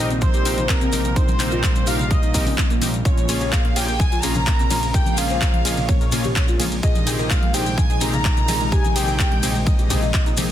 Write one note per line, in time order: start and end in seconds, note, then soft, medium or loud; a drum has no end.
0.00 3.03 A#1 medium
0.00 3.01 C3 medium
0.00 3.01 D#3 medium
0.00 3.01 G3 medium
0.00 6.79 A#3 medium
0.00 1.14 D#4 medium
0.10 0.17 C4 medium
0.10 closed hi-hat soft
0.10 maracas soft
0.21 0.70 C5 loud
0.21 0.66 C5 loud
0.21 kick loud
0.21 closed hi-hat medium
0.21 high conga loud
0.21 maracas soft
0.34 0.40 G4 medium
0.34 closed hi-hat soft
0.34 maracas soft
0.45 0.52 C4 medium
0.45 0.57 C4 medium
0.45 0.57 D#4 medium
0.45 0.57 G4 medium
0.45 0.57 A#4 loud
0.45 open hi-hat loud
0.45 maracas medium
0.57 0.64 D#4 medium
0.57 closed hi-hat soft
0.57 high conga medium
0.57 low conga medium
0.57 maracas soft
0.69 0.76 C4 medium
0.69 1.18 A#4 loud
0.69 1.16 A#4 medium
0.69 kick loud
0.69 clap loud
0.69 closed hi-hat medium
0.69 maracas soft
0.81 0.87 C4 medium
0.81 closed hi-hat soft
0.81 low conga medium
0.81 maracas soft
0.92 0.99 C4 medium
0.92 1.00 C4 medium
0.92 1.00 D#4 medium
0.92 1.00 G4 medium
0.92 1.00 A#4 medium
0.92 open hi-hat loud
0.92 high conga medium
0.92 maracas loud
1.04 1.11 C4 medium
1.04 closed hi-hat soft
1.04 maracas soft
1.16 1.23 D#4 loud
1.16 3.03 F4 medium
1.16 1.89 C5 loud
1.16 1.87 C5 loud
1.16 kick loud
1.16 closed hi-hat medium
1.16 maracas soft
1.28 1.35 G3 medium
1.28 closed hi-hat soft
1.28 high conga loud
1.28 maracas soft
1.39 1.46 G3 medium
1.39 1.84 C4 medium
1.39 1.84 D#4 medium
1.39 1.84 G4 medium
1.39 1.84 A#4 medium
1.39 clap medium
1.39 open hi-hat loud
1.39 maracas medium
1.51 1.58 F4 loud
1.51 closed hi-hat soft
1.51 maracas soft
1.63 1.70 G3 medium
1.63 kick loud
1.63 clap loud
1.63 closed hi-hat medium
1.63 maracas medium
1.75 1.82 G3 medium
1.75 closed hi-hat soft
1.75 high conga medium
1.75 maracas soft
1.86 1.98 C4 medium
1.86 1.98 D#4 medium
1.86 1.94 G4 loud
1.86 1.98 G4 medium
1.86 1.98 A#4 medium
1.86 2.11 F5 loud
1.86 2.12 F5 loud
1.86 open hi-hat loud
1.86 maracas medium
1.99 2.05 G3 medium
1.99 closed hi-hat soft
1.99 low conga medium
1.99 maracas soft
2.10 2.17 G3 medium
2.10 2.58 D#5 loud
2.10 2.58 D#5 medium
2.10 kick loud
2.10 closed hi-hat medium
2.10 high conga medium
2.10 maracas soft
2.23 2.29 D#4 medium
2.23 closed hi-hat soft
2.23 maracas soft
2.34 2.41 G3 medium
2.34 2.46 C4 medium
2.34 2.46 D#4 medium
2.34 2.46 G4 medium
2.34 2.46 A#4 loud
2.34 kick medium
2.34 open hi-hat loud
2.34 low conga medium
2.34 maracas medium
2.46 2.53 C#4 medium
2.46 open hi-hat medium
2.46 high conga medium
2.46 low conga medium
2.46 maracas soft
2.58 2.65 G3 medium
2.58 kick loud
2.58 clap loud
2.58 closed hi-hat medium
2.58 maracas medium
2.70 2.76 A#3 loud
2.70 closed hi-hat soft
2.70 maracas soft
2.81 2.88 G3 medium
2.81 2.89 C4 medium
2.81 2.89 D#4 medium
2.81 2.89 G4 medium
2.81 2.89 A#4 medium
2.81 open hi-hat loud
2.81 high conga medium
2.81 maracas medium
2.94 3.00 G3 medium
2.94 closed hi-hat soft
2.94 maracas soft
3.05 6.81 A#1 medium
3.05 6.79 C#3 medium
3.05 6.79 F3 medium
3.05 10.52 G#3 medium
3.05 6.79 F4 medium
3.05 3.12 F4 loud
3.05 3.49 C#5 loud
3.05 3.54 C#5 loud
3.05 kick loud
3.05 closed hi-hat medium
3.05 maracas medium
3.17 3.24 A#3 medium
3.17 closed hi-hat soft
3.17 high conga medium
3.17 maracas soft
3.29 3.73 A#3 medium
3.29 3.35 A#3 medium
3.29 3.73 C#4 medium
3.29 3.73 F4 medium
3.29 3.73 G#4 medium
3.29 open hi-hat loud
3.29 ride medium
3.29 maracas loud
3.41 3.47 G4 loud
3.41 closed hi-hat soft
3.41 maracas soft
3.52 3.59 A#3 medium
3.52 3.76 F5 medium
3.52 3.78 F5 loud
3.52 kick loud
3.52 clap loud
3.52 closed hi-hat medium
3.52 maracas medium
3.65 3.71 A#3 medium
3.65 closed hi-hat soft
3.65 high conga medium
3.76 3.87 A#3 medium
3.76 3.87 C#4 medium
3.76 3.87 F4 medium
3.76 3.87 G#4 medium
3.76 3.83 A#4 medium
3.76 4.00 G5 loud
3.76 4.01 G5 loud
3.76 open hi-hat loud
3.76 ride medium
3.76 maracas medium
3.88 3.94 A#3 medium
3.88 closed hi-hat soft
3.88 maracas soft
3.99 4.06 A#3 medium
3.99 4.23 G#5 loud
3.99 4.25 G#5 loud
3.99 kick loud
3.99 closed hi-hat medium
3.99 high conga loud
3.99 maracas medium
4.12 4.18 F4 medium
4.12 closed hi-hat soft
4.12 maracas soft
4.22 4.30 A#3 medium
4.22 4.34 A#3 medium
4.22 4.34 C#4 medium
4.22 4.34 F4 medium
4.22 4.35 G#4 loud
4.22 4.94 A#5 loud
4.22 open hi-hat loud
4.22 ride medium
4.22 maracas medium
4.35 4.42 C#4 medium
4.35 closed hi-hat soft
4.35 high conga medium
4.35 low conga medium
4.35 maracas soft
4.46 4.54 A#3 medium
4.46 kick loud
4.46 clap loud
4.46 closed hi-hat medium
4.46 maracas medium
4.59 4.65 C4 loud
4.59 closed hi-hat soft
4.59 low conga medium
4.59 maracas soft
4.70 4.77 A#3 medium
4.70 4.78 A#3 medium
4.70 4.78 C#4 medium
4.70 4.78 F4 medium
4.70 4.78 G#4 medium
4.70 open hi-hat loud
4.70 ride medium
4.70 high conga medium
4.70 maracas medium
4.83 4.89 A#3 medium
4.83 closed hi-hat soft
4.83 maracas soft
4.94 5.01 A#4 loud
4.94 5.19 G5 loud
4.94 5.16 G5 loud
4.94 kick loud
4.94 closed hi-hat medium
4.94 maracas medium
5.06 5.13 A#3 medium
5.06 closed hi-hat soft
5.06 high conga loud
5.06 maracas soft
5.17 5.24 A#3 medium
5.17 5.62 A#3 medium
5.17 5.62 C#4 medium
5.17 5.62 F4 medium
5.17 5.62 G#4 medium
5.17 5.90 F5 loud
5.17 5.89 F5 loud
5.17 open hi-hat loud
5.17 ride medium
5.17 maracas loud
5.30 5.36 C5 loud
5.30 closed hi-hat soft
5.30 maracas soft
5.41 kick loud
5.41 clap loud
5.41 closed hi-hat medium
5.41 maracas medium
5.54 5.60 A#3 medium
5.54 closed hi-hat soft
5.54 high conga medium
5.65 5.76 A#3 medium
5.65 5.76 C#4 medium
5.65 5.76 F4 medium
5.65 5.76 G#4 medium
5.65 5.72 D#5 medium
5.65 open hi-hat loud
5.65 ride medium
5.65 maracas loud
5.77 5.83 A#3 medium
5.77 closed hi-hat soft
5.77 low conga medium
5.77 maracas soft
5.89 5.95 A#3 medium
5.89 6.60 C#5 medium
5.89 kick loud
5.89 closed hi-hat medium
5.89 high conga medium
5.89 maracas medium
6.01 6.07 A#4 medium
6.01 closed hi-hat soft
6.01 maracas soft
6.12 6.19 A#3 medium
6.12 6.23 A#3 medium
6.12 6.23 C#4 medium
6.12 6.23 F4 medium
6.12 6.23 G#4 loud
6.12 open hi-hat loud
6.12 ride medium
6.12 low conga medium
6.12 maracas medium
6.24 6.31 G4 medium
6.24 closed hi-hat soft
6.24 high conga medium
6.24 low conga medium
6.24 maracas soft
6.36 6.43 A#3 medium
6.36 kick loud
6.36 clap loud
6.36 closed hi-hat medium
6.36 maracas medium
6.48 6.54 F4 loud
6.48 closed hi-hat soft
6.48 maracas soft
6.60 6.67 A#3 medium
6.60 6.66 A#3 medium
6.60 6.67 C#4 medium
6.60 6.67 F4 medium
6.60 6.67 G#4 medium
6.60 open hi-hat loud
6.60 ride medium
6.60 high conga loud
6.60 maracas loud
6.72 6.78 A#3 medium
6.72 closed hi-hat soft
6.72 maracas soft
6.83 10.52 A#1 medium
6.83 10.52 C3 medium
6.83 10.52 D#3 medium
6.83 10.52 D#4 loud
6.83 6.90 G#4 loud
6.83 7.27 D#5 loud
6.83 7.32 D#5 loud
6.83 kick loud
6.83 closed hi-hat medium
6.83 maracas medium
6.95 7.02 G#3 medium
6.95 closed hi-hat soft
6.95 high conga medium
6.95 maracas soft
7.07 7.13 G#3 medium
7.07 7.51 C4 medium
7.07 7.51 D#4 medium
7.07 7.51 G4 medium
7.07 7.51 G#4 medium
7.07 open hi-hat loud
7.07 ride medium
7.07 maracas loud
7.19 7.25 A#4 loud
7.19 closed hi-hat soft
7.19 maracas soft
7.30 7.37 G#3 medium
7.30 7.54 F5 medium
7.30 7.53 F5 loud
7.30 kick loud
7.30 clap loud
7.30 closed hi-hat medium
7.30 maracas medium
7.43 7.49 G#3 medium
7.43 closed hi-hat soft
7.43 high conga medium
7.54 7.65 C4 medium
7.54 7.65 D#4 medium
7.54 7.65 G4 medium
7.54 7.65 G#4 medium
7.54 7.61 C5 loud
7.54 7.79 G5 loud
7.54 7.76 G5 loud
7.54 open hi-hat loud
7.54 ride medium
7.54 maracas loud
7.66 7.72 G#3 medium
7.66 closed hi-hat soft
7.66 maracas soft
7.78 8.01 G#5 loud
7.78 8.03 G#5 loud
7.78 kick loud
7.78 closed hi-hat medium
7.78 high conga loud
7.78 maracas medium
7.90 7.96 G#4 medium
7.90 closed hi-hat soft
7.90 maracas soft
8.01 8.08 G#3 medium
8.01 8.12 C4 medium
8.01 8.12 D#4 medium
8.01 8.12 G4 medium
8.01 8.12 G#4 loud
8.01 8.72 A#5 loud
8.01 8.74 A#5 loud
8.01 open hi-hat loud
8.01 ride medium
8.01 maracas loud
8.13 8.20 F4 medium
8.13 closed hi-hat soft
8.13 high conga medium
8.13 low conga medium
8.13 maracas soft
8.25 8.32 G#3 medium
8.25 kick loud
8.25 clap loud
8.25 closed hi-hat medium
8.25 maracas medium
8.37 8.43 D#4 loud
8.37 closed hi-hat soft
8.37 low conga medium
8.37 maracas soft
8.48 8.55 G#3 medium
8.48 8.55 C4 medium
8.48 8.55 D#4 medium
8.48 8.55 G4 medium
8.48 8.56 G#4 medium
8.48 open hi-hat loud
8.48 ride medium
8.48 high conga medium
8.48 maracas loud
8.61 8.67 G#3 medium
8.61 closed hi-hat soft
8.61 maracas soft
8.72 8.79 G4 loud
8.72 8.96 G#5 loud
8.72 8.95 G#5 loud
8.72 kick loud
8.72 closed hi-hat medium
8.72 maracas medium
8.84 8.91 G#3 medium
8.84 closed hi-hat soft
8.84 high conga loud
8.84 maracas soft
8.96 9.02 G#3 medium
8.96 9.40 C4 medium
8.96 9.40 D#4 medium
8.96 9.40 G4 medium
8.96 9.40 G#4 medium
8.96 9.63 G5 loud
8.96 9.68 G5 loud
8.96 open hi-hat loud
8.96 ride medium
8.96 maracas loud
9.08 9.14 G#4 loud
9.08 closed hi-hat soft
9.08 maracas soft
9.19 9.26 G#3 medium
9.19 kick loud
9.19 clap loud
9.19 closed hi-hat medium
9.19 maracas medium
9.32 9.38 G#3 medium
9.32 closed hi-hat soft
9.32 high conga medium
9.43 9.54 C4 medium
9.43 9.54 D#4 medium
9.43 9.54 G4 medium
9.43 9.54 G#4 medium
9.43 9.50 C5 loud
9.43 open hi-hat loud
9.43 ride medium
9.43 maracas loud
9.55 9.61 G#3 medium
9.55 closed hi-hat soft
9.55 low conga medium
9.55 maracas soft
9.66 9.73 G#3 medium
9.66 10.37 D#5 medium
9.66 10.38 D#5 medium
9.66 kick loud
9.66 closed hi-hat medium
9.66 high conga loud
9.66 maracas medium
9.79 9.85 G4 loud
9.79 closed hi-hat soft
9.79 maracas soft
9.90 9.97 G#3 medium
9.90 10.01 C4 medium
9.90 10.01 D#4 medium
9.90 10.01 G4 medium
9.90 10.01 G#4 loud
9.90 kick medium
9.90 open hi-hat loud
9.90 ride medium
9.90 low conga medium
9.90 maracas medium
10.02 10.09 F4 medium
10.02 closed hi-hat soft
10.02 high conga medium
10.02 low conga medium
10.02 maracas soft
10.14 10.20 G#3 medium
10.14 kick loud
10.14 clap loud
10.14 closed hi-hat medium
10.14 maracas medium
10.26 10.32 D#4 loud
10.26 closed hi-hat soft
10.26 maracas soft
10.37 10.44 G#3 medium
10.37 10.44 C4 medium
10.37 10.44 D#4 medium
10.37 10.44 G4 medium
10.37 10.44 G#4 medium
10.37 open hi-hat loud
10.37 ride medium
10.37 high conga medium
10.37 maracas medium